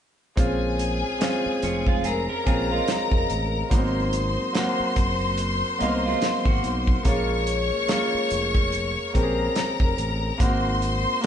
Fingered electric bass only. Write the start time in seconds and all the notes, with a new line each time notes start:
0.38 A#1
1.46 muted fingered electric bass stroke
1.63 F1
2.47 A#1
3.12 F1
3.30 A1
3.72 G#1
4.80 muted fingered electric bass stroke
4.97 F#1
5.81 C2
6.46 G#1
6.64 B1
7.06 A#1
8.14 muted fingered electric bass stroke
8.31 F1
9.15 A#1
9.80 F1
9.98 A1
10.40 G#1